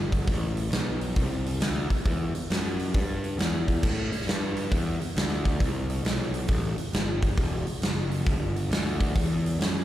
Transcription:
Already playing: picked electric bass G1
0.12 kick, open hi-hat
0.28 picked electric bass A1, kick, open hi-hat
0.57 open hi-hat
0.72 picked electric bass B1, snare, open hi-hat
1.01 open hi-hat
1.16 picked electric bass C2, kick, open hi-hat
1.46 open hi-hat
1.60 picked electric bass D2, snare, open hi-hat
1.90 muted picked electric bass stroke, kick, open hi-hat
2.05 picked electric bass E2, kick, open hi-hat
2.35 muted picked electric bass stroke, open hi-hat
2.50 picked electric bass F#2, snare, open hi-hat
2.79 open hi-hat
2.94 picked electric bass G2, kick, open hi-hat
3.24 open hi-hat
3.38 picked electric bass E2, snare, open hi-hat
3.68 kick, open hi-hat
3.83 picked electric bass A2, kick, crash
4.12 muted picked electric bass stroke, open hi-hat
4.21 snare
4.27 picked electric bass G2, snare, open hi-hat
4.56 open hi-hat
4.71 picked electric bass E2, kick, open hi-hat
5.01 muted picked electric bass stroke, open hi-hat
5.16 picked electric bass D2, snare, open hi-hat
5.45 kick, open hi-hat
5.60 picked electric bass C2, kick, open hi-hat
5.90 open hi-hat
6.04 picked electric bass B1, snare, open hi-hat
6.34 open hi-hat
6.48 picked electric bass A1, kick, open hi-hat
6.78 muted picked electric bass stroke, open hi-hat
6.93 picked electric bass G1, snare, open hi-hat
7.22 kick, open hi-hat
7.37 picked electric bass E1, kick, open hi-hat
7.67 muted picked electric bass stroke, open hi-hat
7.82 picked electric bass F#1, snare, open hi-hat
8.11 open hi-hat
8.27 picked electric bass G1, kick, open hi-hat
8.56 open hi-hat
8.70 picked electric bass D2, snare, open hi-hat
9.01 kick, open hi-hat
9.15 picked electric bass E2, kick, open hi-hat
9.46 open hi-hat
9.60 picked electric bass F#2, snare, open hi-hat

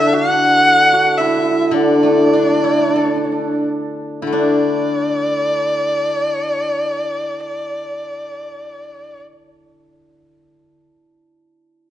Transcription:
Already playing: guzheng D3, hammered dulcimer D4 E4 F#4, erhu E5
0.07 hammered dulcimer A4
0.13 hammered dulcimer F#4, erhu F#5
0.93 hammered dulcimer F#4
1.18 hammered dulcimer E4, erhu E5
1.27 hammered dulcimer E4
1.37 hammered dulcimer E4
1.43 hammered dulcimer E4
1.51 hammered dulcimer E4
1.60 hammered dulcimer E4
1.71 guzheng D3, hammered dulcimer D4, erhu D5
1.82 hammered dulcimer D4
1.91 hammered dulcimer D4
1.98 hammered dulcimer D4
2.03 guzheng A3, hammered dulcimer D4
2.15 hammered dulcimer D4
2.26 hammered dulcimer D4
2.33 guzheng D4, hammered dulcimer D4
2.43 hammered dulcimer D4
2.50 hammered dulcimer D4
2.61 hammered dulcimer D4, guzheng E4
2.69 hammered dulcimer D4
2.79 hammered dulcimer D4
2.89 hammered dulcimer D4
2.96 hammered dulcimer D4, guzheng A4
3.05 hammered dulcimer D4
3.16 hammered dulcimer D4
3.25 hammered dulcimer D4
3.32 hammered dulcimer D4
4.22 guzheng D3, hammered dulcimer E4
4.27 guzheng A3
4.32 guzheng D4, hammered dulcimer D4, erhu D5

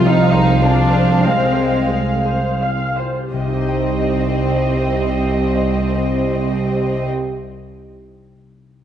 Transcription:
Already playing: double bass section C2, harp C3 C4 C5, cello section F3, viola section C4, violin section F5
0.07 violin section D#4, harp F4, viola section F5
0.33 harp G#4, viola section C5
0.62 violin section D4, viola section G#4, harp C5
0.90 harp G#4, viola section C5
1.22 cello section G#3, violin section C4, harp C5, viola section F5
1.54 harp G#4, viola section C5
1.88 viola section G#4, harp C5
2.23 harp G#4, viola section C5
2.62 harp C4, viola section F5
2.98 harp F4, viola section C5
3.32 double bass section C2, cello section C2, harp C3, viola section C4 G4, violin section C4 D#5
3.40 harp C4
3.47 harp D#4
3.54 harp G4
3.61 harp C5
3.68 harp G5

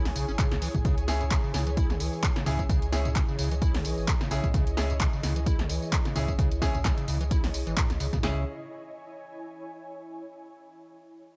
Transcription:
Already playing: sub bass C#2, ambient pad E4 C#5 G#5, analog synth pad G#4
0.05 acid bass C#3, snare, open hi-hat, tambourine
0.16 sub bass B1, acid bass C#3, open hi-hat, tambourine
0.28 sub bass G#1, acid bass C#4, tambourine
0.39 acid bass C#3, kick, clap, closed hi-hat, mid tom, tambourine
0.51 sub bass C#2, acid bass C#3, snare, closed hi-hat, tambourine
0.62 acid bass E3, open hi-hat, tambourine
0.75 sub bass G#1, kick, closed hi-hat, mid tom, tambourine
0.85 sub bass C#2, acid bass C#3, kick, closed hi-hat, tambourine
0.98 closed hi-hat, tambourine
1.08 acid bass C#2, grand piano C#4 E4 G#4, snare, open hi-hat, tambourine
1.21 acid bass C#3, closed hi-hat, tambourine
1.31 acid bass C#3, kick, clap, closed hi-hat, tambourine
1.44 acid bass C#3, tambourine
1.54 sub bass C#2, acid bass C#3, snare, open hi-hat, tambourine
1.67 acid bass E3, closed hi-hat, tambourine
1.77 acid bass E4, kick, closed hi-hat, tambourine
1.82 ambient pad D#5
1.90 acid bass C#3, snare, closed hi-hat, tambourine
2.00 sub bass C#2, acid bass E3, open hi-hat, tambourine
2.13 tambourine
2.23 acid bass C#3, kick, clap, closed hi-hat, tambourine
2.36 acid bass C#3, snare, closed hi-hat, tambourine
2.46 sub bass C#2, acid bass C#3, grand piano C#4 E4 G#4, mid tom, open hi-hat, tambourine
2.59 kick, closed hi-hat, tambourine
2.69 sub bass C#2, acid bass C#3, kick, closed hi-hat, tambourine
2.82 closed hi-hat, tambourine
2.92 acid bass C#2, grand piano C#4 E4 G#4, snare, open hi-hat, tambourine
3.05 acid bass C#3, closed hi-hat, mid tom, tambourine
3.16 acid bass C#3, kick, clap, closed hi-hat, tambourine
3.28 acid bass C#3, tambourine
3.39 sub bass C#2, acid bass C#3, open hi-hat, tambourine
3.51 acid bass E3, closed hi-hat, tambourine
3.62 acid bass E4, kick, closed hi-hat, tambourine
3.74 acid bass C#3, snare, open hi-hat, tambourine
3.85 sub bass B1, acid bass E3, open hi-hat, tambourine
3.98 sub bass G#1, tambourine
4.08 acid bass C#3, kick, clap, closed hi-hat, tambourine
4.21 acid bass C#3, snare, closed hi-hat, tambourine
4.31 sub bass B1, acid bass C#3, grand piano C#4 E4 G#4, open hi-hat, tambourine
4.44 sub bass C#2, kick, closed hi-hat, mid tom, tambourine
4.54 sub bass C#2, acid bass C#3, kick, closed hi-hat, tambourine
4.67 closed hi-hat, tambourine
4.77 acid bass C#2, grand piano C#4 E4 G#4, snare, open hi-hat, tambourine
4.90 acid bass C#3, closed hi-hat, tambourine
5.00 acid bass C#3, kick, clap, closed hi-hat, tambourine
5.13 acid bass C#3, tambourine
5.23 sub bass C#2, acid bass C#3, snare, open hi-hat, tambourine
5.36 acid bass E3, closed hi-hat, tambourine
5.46 acid bass E4, kick, closed hi-hat, tambourine
5.59 acid bass C#3, snare, closed hi-hat, tambourine
5.69 sub bass C#2, acid bass E3, open hi-hat, tambourine
5.82 tambourine
5.93 acid bass C#3, kick, clap, closed hi-hat, tambourine
6.05 acid bass C#3, snare, closed hi-hat, tambourine
6.16 sub bass C#2, acid bass C#3, grand piano C#4 E4 G#4, mid tom, open hi-hat, tambourine
6.28 kick, closed hi-hat, tambourine
6.39 sub bass C#2, acid bass C#3, kick, closed hi-hat, tambourine
6.51 closed hi-hat, tambourine
6.62 acid bass C#2, grand piano C#4 E4 G#4, kick, snare, open hi-hat, tambourine
6.74 acid bass C#3, closed hi-hat, mid tom, tambourine
6.85 acid bass C#3, kick, snare, clap, closed hi-hat, tambourine
6.98 acid bass C#3, closed hi-hat, tambourine
7.08 sub bass C#2, acid bass C#3, open hi-hat, tambourine
7.21 acid bass E3, closed hi-hat, tambourine
7.31 acid bass E4, kick, closed hi-hat, tambourine
7.44 acid bass C#3, snare, open hi-hat, tambourine
7.54 sub bass B1, open hi-hat, tambourine
7.67 sub bass G#1, acid bass E3, closed hi-hat, tambourine
7.77 acid bass D#3, kick, clap, closed hi-hat, mid tom, tambourine
7.90 sub bass C#2, snare, closed hi-hat, tambourine
8.00 sub bass C#2, acid bass C#3, open hi-hat, tambourine
8.13 sub bass F#2, acid bass C#3, kick, snare, closed hi-hat, mid tom, tambourine
8.23 sub bass C#2, acid bass C#3, grand piano C#4 E4 G#4, ambient pad E4, snare, open hi-hat
8.31 ambient pad C#5
8.38 ambient pad G#5

